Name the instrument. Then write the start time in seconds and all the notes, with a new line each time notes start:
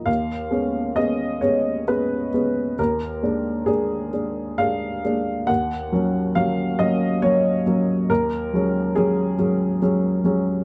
upright piano
Already playing: A#2 F3 A#3 D#4
0.06 D#2 F5
0.51 G#3 B3 C#4
0.96 G#3 B3 C#4 D#5
1.41 G#3 B3 C#4 C#5
1.88 G#3 B3 C#4 B4
2.34 G#3 B3 C#4
2.79 D#2 A#4
3.23 G#3 A#3 D4
3.66 G#3 A#3 D4 G#4
4.13 G#3 A#3 D4
4.58 G#3 A#3 D4 F5
5.05 G#3 A#3 D4
5.47 D#2 F#5
5.92 F#3 A#3 C#4
6.35 F#3 A#3 C#4 F5
6.79 F#3 A#3 C#4 D#5
7.22 F#3 A#3 C#4 C#5
7.66 F#3 A#3 C#4
8.10 D#2 A#4
8.53 F#3 G#3 C#4
8.96 F#3 G#3 C#4 G#4
9.39 F#3 G#3 C#4
9.82 F#3 G#3 C#4
10.24 F#3 G#3 C#4